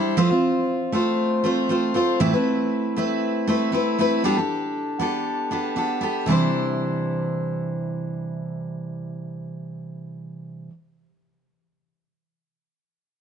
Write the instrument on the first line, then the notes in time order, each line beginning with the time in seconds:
steel-string acoustic guitar
Already playing: G3 D4 E4 C5
0.17 F3 A3 C4 F4 C5
0.30 C4 F4 C5
0.92 A3 C4 F4 C5
1.44 A3 C4 F4 C5
1.69 A3 C4 F4 C5
1.94 A3 C4 F4 C5
2.20 A2 E3 A3 C4 E4 B4
2.33 A3 C4 E4 B4
2.96 A3 C4 E4 B4
3.48 A3 C4 E4 B4
3.72 A3 C4 E4 B4
3.99 A3 C4 E4 B4
4.24 G3 B3 D4 G4 A4
4.37 D4 G4 A4
4.99 B3 D4 G4 A4
5.51 B3 D4 G4 A4
5.76 B3 D4 G4 A4
6.01 B3 D4 G4 A4
6.26 C3 E3 G3 D4
6.30 E4 C5